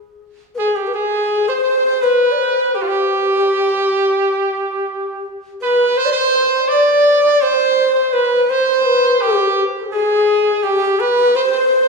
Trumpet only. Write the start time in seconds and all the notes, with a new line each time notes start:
0.59 G#4
0.76 G4
0.95 G#4
1.49 C5
1.55 C5
1.64 C5
1.70 C5
1.78 C5
1.86 C5
2.02 B4
2.75 G4
2.82 F4
2.88 G4
5.62 B4
5.98 C5
6.12 C5
6.68 D5
7.41 C5
7.94 C5
8.13 B4
8.42 B4
8.50 C5
9.21 G4
9.92 G#4
10.63 G4
11.00 B4
11.36 C5
11.44 C5
11.52 C5
11.60 C5
11.67 C5
11.75 C5
11.81 C5